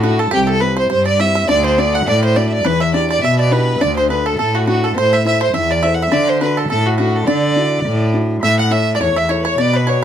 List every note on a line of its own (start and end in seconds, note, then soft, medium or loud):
0.00 0.26 A2 loud
0.00 0.26 D4 medium
0.00 0.18 F#4 medium
0.00 0.27 F#4 soft
0.00 0.18 F#4 medium
0.00 0.21 F#4 medium
0.00 0.27 A4 medium
0.18 0.34 A4 medium
0.18 0.32 A4 medium
0.18 0.31 A4 medium
0.31 0.84 C2 medium
0.31 0.61 C3 medium
0.31 0.48 G4 loud
0.31 0.48 G4 medium
0.31 0.44 G4 loud
0.44 0.50 G4 medium
0.44 0.60 A4 medium
0.48 0.64 A4 medium
0.48 0.62 A4 loud
0.60 0.84 C4 medium
0.60 0.85 E4 medium
0.60 0.85 G4 medium
0.60 0.76 B4 medium
0.60 0.77 B4 medium
0.60 0.80 B4 medium
0.76 0.89 C5 medium
0.76 0.90 C5 medium
0.90 1.42 G2 loud
0.90 1.19 G3 medium
0.90 1.05 C5 medium
0.90 1.08 C5 medium
0.90 1.06 C5 loud
1.05 1.18 D5 medium
1.05 1.21 D5 medium
1.05 1.22 D5 loud
1.19 1.42 C4 medium
1.19 1.43 E4 soft
1.19 1.43 G4 medium
1.19 1.34 E5 medium
1.19 1.50 E5 medium
1.19 1.49 E5 loud
1.35 1.48 E5 loud
1.49 2.00 D2 loud
1.49 1.77 D3 medium
1.49 1.78 D5 medium
1.49 1.64 D5 loud
1.64 1.77 C5 medium
1.64 1.81 C5 loud
1.78 2.01 A3 medium
1.78 2.01 D4 medium
1.78 2.02 F#4 medium
1.78 1.93 D5 medium
1.78 1.95 D5 medium
1.78 1.96 D5 medium
1.93 2.09 F#5 medium
1.93 2.07 F#5 loud
1.93 2.07 F#5 medium
2.06 2.58 A2 loud
2.06 2.35 A3 medium
2.06 2.26 D5 medium
2.06 2.22 D5 medium
2.06 2.23 D5 loud
2.23 2.36 C5 medium
2.23 2.40 C5 medium
2.23 2.38 C5 loud
2.36 2.59 A3 medium
2.36 2.60 D4 soft
2.36 2.60 F#4 medium
2.36 2.63 D5 medium
2.36 2.48 D5 medium
2.36 2.53 D5 medium
2.49 2.68 D5 loud
2.49 2.54 E5 medium
2.53 2.67 D5 medium
2.65 3.17 E2 medium
2.65 2.93 E3 medium
2.65 2.81 B4 loud
2.65 2.84 B4 medium
2.65 2.83 B4 loud
2.80 2.93 E5 medium
2.80 2.94 E5 loud
2.80 2.98 E5 medium
2.94 3.17 D4 medium
2.94 3.17 E4 medium
2.94 3.17 G4 medium
2.94 3.09 D5 medium
2.94 3.11 D5 medium
3.10 3.22 D5 loud
3.10 3.23 D5 medium
3.10 3.26 D5 medium
3.22 3.51 B2 medium
3.22 3.74 B2 loud
3.22 3.38 E5 medium
3.22 3.39 E5 medium
3.22 3.42 E5 medium
3.39 3.51 D5 medium
3.39 3.53 D5 loud
3.39 3.53 D5 medium
3.51 3.75 D4 medium
3.51 3.75 E4 soft
3.51 3.75 G4 medium
3.51 3.82 B4 loud
3.51 3.79 B4 medium
3.51 3.84 B4 medium
3.81 4.32 D2 loud
3.81 4.09 D3 medium
3.81 3.96 D5 loud
3.81 3.98 D5 medium
3.96 4.09 C5 medium
3.96 4.10 C5 medium
4.09 4.33 D4 medium
4.09 4.33 F#4 soft
4.09 4.33 A4 medium
4.09 4.28 B4 medium
4.09 4.25 B4 medium
4.09 4.18 B4 medium
4.26 4.38 A4 medium
4.39 4.91 A2 loud
4.39 4.67 A3 medium
4.39 4.57 A4 medium
4.39 4.54 A4 medium
4.39 4.58 A4 medium
4.55 4.66 F#4 medium
4.55 4.67 F#4 medium
4.55 4.68 F#4 medium
4.67 4.91 D4 medium
4.67 4.82 F#4 medium
4.67 4.86 F#4 medium
4.67 4.91 F#4 soft
4.67 4.83 F#4 medium
4.67 4.91 A4 medium
4.84 4.96 A4 medium
4.84 4.99 A4 medium
4.96 5.48 A2 medium
4.96 5.24 A3 medium
4.96 5.15 C5 loud
4.96 5.15 C5 medium
4.96 5.14 C5 medium
5.13 5.25 E5 medium
5.13 5.26 E5 loud
5.13 5.25 E5 medium
5.25 5.48 E4 medium
5.25 5.49 A4 soft
5.25 5.49 C5 medium
5.25 5.44 E5 medium
5.25 5.41 E5 medium
5.25 5.41 E5 loud
5.41 5.53 C5 medium
5.41 5.56 C5 medium
5.41 5.54 C5 medium
5.53 6.06 E2 loud
5.53 5.82 E3 medium
5.53 5.69 E5 medium
5.53 5.71 E5 medium
5.53 5.73 E5 medium
5.70 5.86 D5 medium
5.70 5.82 D5 medium
5.70 5.85 D5 medium
5.83 6.07 E4 medium
5.83 6.07 A4 medium
5.83 6.07 C5 medium
5.83 5.92 E5 medium
5.83 5.96 E5 medium
5.83 5.94 E5 medium
5.95 6.05 F#5 medium
6.02 6.11 E5 medium
6.02 6.12 E5 medium
6.02 6.15 E5 loud
6.12 6.40 D3 medium
6.12 6.64 D3 medium
6.12 6.27 D5 medium
6.12 6.30 D5 medium
6.12 6.31 D5 loud
6.27 6.40 C5 medium
6.27 6.44 C5 medium
6.27 6.41 C5 loud
6.41 6.64 D4 medium
6.41 6.65 F#4 soft
6.41 6.65 A4 medium
6.41 6.56 B4 medium
6.41 6.60 B4 medium
6.41 6.59 B4 medium
6.57 6.69 A4 medium
6.57 6.70 A4 medium
6.70 7.21 A2 loud
6.70 6.99 A3 medium
6.70 6.85 A4 medium
6.70 6.88 A4 loud
6.70 6.88 A4 medium
6.86 6.97 F#4 medium
6.86 6.99 F#4 medium
6.86 6.98 F#4 medium
6.98 7.22 D4 medium
6.98 7.28 F#4 medium
6.98 7.16 F#4 medium
6.98 7.17 F#4 medium
6.98 7.23 F#4 soft
6.98 7.23 A4 medium
7.15 7.30 A4 medium
7.15 7.28 A4 medium
7.27 7.56 D3 medium
7.27 7.79 D3 loud
7.27 8.14 D5 loud
7.27 8.10 D5 medium
7.27 8.15 D5 medium
7.56 7.79 D4 soft
7.56 7.80 E4 medium
7.56 7.80 F#4 medium
7.85 8.37 A2 loud
7.85 8.13 A3 medium
8.13 8.37 D4 medium
8.13 8.37 E4 soft
8.13 8.37 F#4 medium
8.43 8.94 A2 loud
8.43 9.55 A3 medium
8.43 8.58 E5 medium
8.43 8.58 E5 loud
8.59 8.71 F#5 medium
8.59 8.73 F#5 loud
8.59 8.74 F#5 medium
8.71 8.99 E4 medium
8.71 8.99 A4 medium
8.71 9.00 C#5 medium
8.71 8.94 E5 loud
8.71 8.94 E5 medium
8.94 9.02 D5 medium
8.94 9.01 D5 medium
8.94 8.98 D5 loud
9.00 9.15 E2 medium
9.00 9.28 E4 soft
9.00 9.28 A4 soft
9.00 9.19 C#5 medium
9.00 9.15 C#5 medium
9.00 9.29 C#5 medium
9.00 9.20 C#5 loud
9.16 9.54 E2 medium
9.16 9.29 E5 medium
9.16 9.31 E5 medium
9.16 9.32 E5 medium
9.29 9.57 E4 medium
9.29 9.57 A4 medium
9.29 9.44 C#5 loud
9.29 9.45 C#5 medium
9.29 9.58 C#5 medium
9.29 9.41 C#5 medium
9.41 9.48 B4 medium
9.41 9.57 C#5 loud
9.46 9.58 C#5 medium
9.46 9.62 C#5 loud
9.58 10.04 B2 medium
9.58 10.04 B3 medium
9.58 9.73 D5 loud
9.58 9.77 D5 medium
9.58 9.78 D5 loud
9.73 9.86 B4 medium
9.73 9.90 B4 medium
9.87 10.04 F#4 medium
9.87 10.04 B4 medium
9.87 10.02 C#5 medium
9.87 10.04 C#5 medium
9.87 10.04 D5 medium